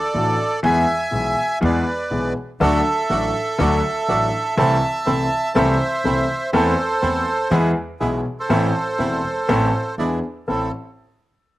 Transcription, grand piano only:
0.14 A1 A2 E3 A3 D4 F#4
0.63 E2 E3 G#3 B3 G#4
1.11 B1 B2 E3 G#3 B3 G#4
1.61 E2 E3 G#3 B3 G#4
2.10 B1 B2 E3 G#3 B3 G#4
2.60 D2 D3 F#3 A3 D4 A4
3.10 A1 A2 F#3 A3 D4 A4
3.58 D2 D3 F#3 A3 D4 A4
4.09 A1 A2 F#3 A3 D4 A4
4.57 C2 C3 E3 A3 C4 A4
5.06 C2 C3 E3 A3 C4 A4
5.55 C2 C3 E3 A3 C4 A4
6.05 C2 C3 E3 A3 C4 A4
6.53 E2 E3 A3 C4 A4
7.02 E2 E3 A3 C4 A4
7.51 E2 E3 G#3 B3 G#4
8.00 B1 B2 E3 G#3 B3 G#4
8.49 A1 A2 E3 A3 C4 A4
8.98 E1 E2 E3 A3 C4 A4
9.48 A1 A2 E3 A3 C4 A4
9.98 E2 E3 B3 D4 G#4
10.48 A1 C4 E4 A4

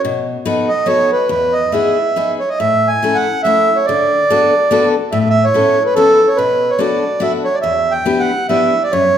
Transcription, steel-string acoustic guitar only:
0.05 B2
0.46 B3 D#4 F#4 A4
0.86 B3 D#4 F#4 A4
1.29 E2
1.72 B3 D#4 E4 G#4
2.16 B3 D#4 E4 G#4
2.60 A2
3.03 A3 C#4 E4 A4
3.45 A3 C#4 E4 A4
3.89 D3
4.30 B3 D4 F#4 A4
4.71 B3 D4 F#4 A4
5.12 A2
5.54 B3 C#4 E4 A4
5.96 B3 C#4 E4 A4
6.38 B2
6.79 B3 D4 F#4 A4
7.20 B3 D4 F#4 A4
7.63 E2
8.06 B3 D4 E4 G4
8.49 B3 D4 E4 G4
8.93 F#2

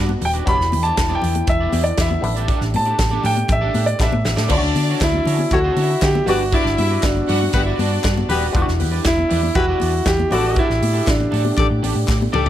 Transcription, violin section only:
4.49 D4 D5
5.76 E4 E5
6.51 D4 D5
6.77 E4 E5
7.28 F#4 F#5
7.51 F#4 F#5
7.63 E4 E5
7.76 D4 D5

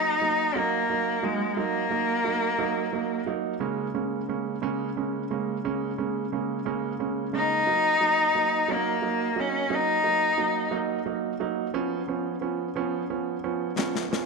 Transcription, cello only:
Already playing: D#4
0.56 A#3
1.24 G#3
1.57 A#3
7.35 D#4
8.72 A#3
9.40 C#4
9.74 D#4

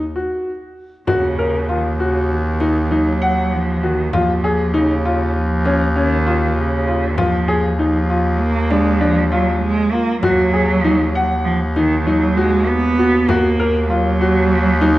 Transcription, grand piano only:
0.16 F#4
1.07 F#4
1.39 A#4
1.69 F4
2.00 F#4
2.60 D#4
2.91 D#4
3.22 F#5
3.83 F#4
4.13 F4
4.44 G#4
4.74 D#4
5.05 F4
5.66 C#4
5.96 C#4
6.26 F4
6.87 F4
7.17 F4
7.48 G#4
7.79 D#4
8.10 F4
8.71 D4
9.01 D4
9.32 F4
9.93 F4
10.23 F#4
10.54 G#4
10.84 D#4
11.15 F#5
11.76 D#4
12.07 D#4
12.37 F#4
12.99 F#4
13.29 F#4
13.60 A#4
13.90 F4
14.21 F#4
14.81 D#4

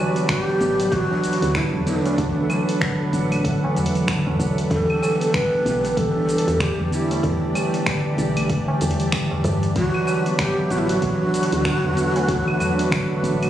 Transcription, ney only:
Already playing: F#4
0.30 F#4
0.41 G4
0.93 F#4
1.56 E4
1.87 D4
4.71 A4
5.34 B4
5.98 A4
6.61 G4
6.93 E4
9.77 F#4
10.40 G4
10.71 F#4
10.78 E4
10.88 F#4

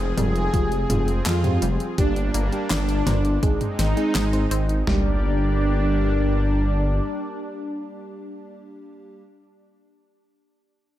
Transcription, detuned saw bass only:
Already playing: F1
0.18 F1
0.54 F1
0.90 F1
1.26 F2
1.62 F1
1.98 G1
2.35 G1
2.71 G1
3.07 G1
3.43 G#1
3.79 G#1
4.15 G#1
4.51 G#1
4.87 G1

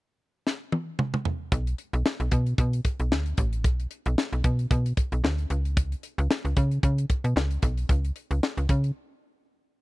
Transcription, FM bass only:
1.52 B1
1.93 B1
2.20 B1
2.32 B2
2.58 B2
3.00 B1
3.11 D2
3.38 A1
3.64 B1
4.06 B1
4.33 B1
4.44 B2
4.71 B2
5.12 B1
5.24 D2
5.50 C#2
6.18 C#2
6.45 C#2
6.57 C#3
6.83 C#3
7.24 B2
7.36 C#2
7.63 B1
7.89 C#2
8.31 C#2
8.57 C#2
8.69 C#3

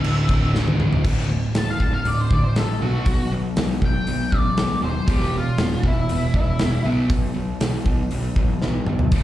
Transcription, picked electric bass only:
0.05 D1
0.29 D1
0.55 D1
1.04 D1
1.55 D1
1.80 D1
2.05 D1
2.31 D1
2.57 A#1
2.82 B1
3.06 B1
3.32 B1
3.57 B1
3.82 B1
4.08 B1
4.32 A1
4.57 B1
4.82 D#1
5.08 E1
5.58 E1
5.83 E1
6.09 E1
6.34 E1
6.61 E1
6.85 B1
7.10 B1
7.36 B1
7.61 B1
7.85 B1
8.12 B1
8.36 A1
8.63 B1
8.87 B1
9.12 D1

